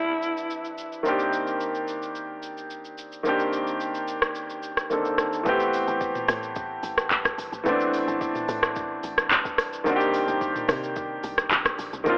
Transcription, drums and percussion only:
0.23 shaker
0.37 shaker
0.50 shaker
0.65 shaker
0.78 shaker
0.92 shaker
1.05 shaker
1.19 shaker
1.33 shaker
1.47 shaker
1.61 shaker
1.75 shaker
1.88 shaker
2.03 shaker
2.15 shaker
2.43 shaker
2.57 shaker
2.70 shaker
2.85 shaker
2.98 shaker
3.12 shaker
3.25 shaker
3.40 shaker
3.53 shaker
3.67 shaker
3.80 shaker
3.95 shaker
4.08 shaker
4.22 cross-stick, shaker
4.35 shaker
4.50 shaker
4.63 shaker
4.77 cross-stick, shaker
4.91 shaker
5.05 shaker
5.18 cross-stick, shaker
5.33 shaker
5.46 kick, shaker
5.60 shaker
5.73 open hi-hat, shaker
5.88 shaker
6.01 kick, shaker
6.15 mid tom, shaker
6.28 cross-stick, open hi-hat, shaker
6.43 shaker
6.56 kick, shaker
6.83 open hi-hat, shaker
6.98 cross-stick, shaker
7.11 kick, clap, shaker
7.25 kick, cross-stick, shaker
7.39 open hi-hat, shaker
7.53 shaker
7.66 kick, shaker
7.80 shaker
7.94 open hi-hat, shaker
8.08 shaker
8.21 kick, shaker
8.35 mid tom, shaker
8.49 open hi-hat, shaker
8.63 cross-stick, shaker
8.76 kick, shaker
9.03 open hi-hat, shaker
9.18 cross-stick, shaker
9.31 kick, clap, shaker
9.45 kick, shaker
9.58 cross-stick, open hi-hat, shaker
9.73 shaker
9.86 kick, shaker
10.00 shaker
10.14 open hi-hat, shaker
10.28 shaker
10.41 kick, shaker
10.56 mid tom, shaker
10.69 cross-stick, open hi-hat, shaker
10.84 shaker
10.96 kick, shaker
11.24 open hi-hat, shaker
11.38 cross-stick, shaker
11.51 kick, clap, shaker
11.65 kick, cross-stick, shaker
11.79 open hi-hat, shaker
11.93 shaker
12.06 kick, shaker

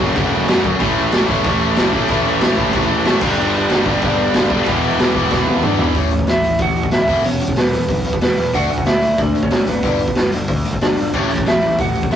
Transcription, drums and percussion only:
0.16 kick, crash
0.48 snare, crash
0.64 kick
0.80 kick, crash
1.12 snare, crash
1.29 kick
1.44 kick, crash
1.76 snare, crash
1.93 kick
2.08 kick, crash
2.41 snare, crash
2.57 kick
2.73 kick, crash
3.05 snare, crash
3.21 kick, crash
3.38 crash
3.70 snare, crash
3.86 kick
4.02 kick, crash
4.34 snare, crash
4.50 kick
4.66 kick, crash
4.99 snare, crash
5.15 kick
5.31 kick, snare
5.47 high tom
5.62 mid tom
5.79 floor tom
5.95 kick, open hi-hat
6.11 open hi-hat
6.19 kick
6.27 snare, open hi-hat
6.43 open hi-hat
6.59 kick, open hi-hat
6.76 open hi-hat
6.83 kick
6.91 snare, open hi-hat
7.07 kick, open hi-hat
7.24 open hi-hat
7.40 open hi-hat
7.48 kick
7.56 snare, open hi-hat
7.73 open hi-hat
7.89 kick, open hi-hat
8.04 open hi-hat
8.13 kick
8.21 snare, open hi-hat
8.37 open hi-hat
8.54 kick, open hi-hat
8.70 open hi-hat
8.78 kick
8.86 snare, open hi-hat
9.02 open hi-hat
9.18 kick, open hi-hat
9.35 open hi-hat
9.43 kick
9.51 snare, open hi-hat
9.66 open hi-hat
9.83 kick, open hi-hat
9.99 open hi-hat
10.08 kick
10.15 snare, open hi-hat
10.32 open hi-hat
10.48 kick, open hi-hat
10.65 open hi-hat
10.73 kick
10.81 snare, open hi-hat
10.98 open hi-hat
11.14 kick, crash
11.30 open hi-hat
11.38 kick
11.46 snare, open hi-hat
11.63 open hi-hat
11.79 kick, open hi-hat
11.95 open hi-hat
12.03 kick
12.11 snare, open hi-hat

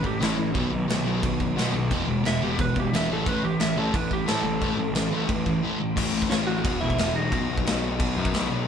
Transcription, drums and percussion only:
0.04 kick
0.22 snare, crash
0.55 kick, crash
0.89 snare, crash
1.23 kick, crash
1.40 kick
1.58 snare, crash
1.91 kick, crash
2.25 snare, crash
2.59 kick, crash
2.76 kick
2.94 snare, crash
3.26 kick, crash
3.60 snare, crash
3.94 kick, crash
4.11 kick
4.28 snare, crash
4.61 kick, crash
4.95 snare, crash
5.29 kick, crash
5.46 kick
5.97 kick, crash
6.22 kick
6.31 snare, crash
6.65 kick, crash
6.90 kick
6.98 snare, crash
7.32 kick, crash
7.58 kick
7.66 snare, crash
8.00 kick, crash
8.25 kick
8.34 snare, crash

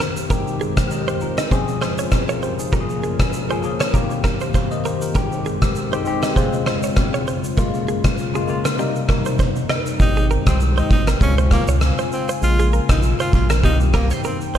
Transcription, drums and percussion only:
0.00 cross-stick, shaker
0.17 shaker
0.30 kick, shaker
0.47 shaker
0.61 shaker
0.77 kick, cross-stick, shaker
0.91 shaker
1.08 shaker
1.21 shaker
1.38 cross-stick, shaker
1.51 kick, shaker
1.68 shaker
1.81 cross-stick, shaker
1.98 shaker
2.12 kick, cross-stick, shaker
2.29 shaker
2.43 shaker
2.59 shaker
2.73 kick, shaker
2.90 shaker
3.03 shaker
3.20 kick, cross-stick, shaker
3.33 shaker
3.50 shaker
3.63 shaker
3.80 cross-stick, shaker
3.94 kick, shaker
4.11 shaker
4.24 kick, cross-stick, shaker
4.40 shaker
4.54 kick, shaker
4.71 shaker
4.85 shaker
5.02 shaker
5.15 kick, shaker
5.32 shaker
5.46 shaker
5.62 kick, cross-stick, shaker
5.75 shaker
5.92 shaker
6.05 shaker
6.23 cross-stick, shaker
6.36 kick, shaker
6.53 shaker
6.66 cross-stick, shaker
6.83 shaker
6.96 kick, cross-stick, shaker
7.14 shaker
7.27 shaker
7.44 shaker
7.58 kick, shaker
7.74 shaker
7.88 shaker
8.04 kick, cross-stick, shaker
8.18 shaker
8.35 shaker
8.48 shaker
8.65 cross-stick, shaker
8.79 shaker
8.95 shaker
9.09 kick, cross-stick, shaker
9.25 shaker
9.39 kick, shaker
9.56 shaker
9.69 cross-stick, shaker
9.86 shaker
10.00 kick, shaker
10.17 shaker
10.30 shaker
10.47 kick, cross-stick, shaker
10.60 shaker
10.77 shaker
10.90 kick, shaker
11.07 cross-stick, shaker
11.21 kick, shaker
11.38 shaker
11.51 kick, cross-stick, shaker
11.68 shaker
11.81 cross-stick, shaker
11.98 shaker
12.12 shaker
12.29 shaker
12.42 shaker
12.59 shaker
12.73 shaker
12.89 kick, cross-stick, shaker
13.03 shaker
13.20 shaker
13.33 kick, shaker
13.50 cross-stick, shaker
13.64 kick, shaker
13.80 shaker
13.94 kick, cross-stick, shaker
14.10 shaker
14.24 shaker
14.41 shaker
14.55 shaker

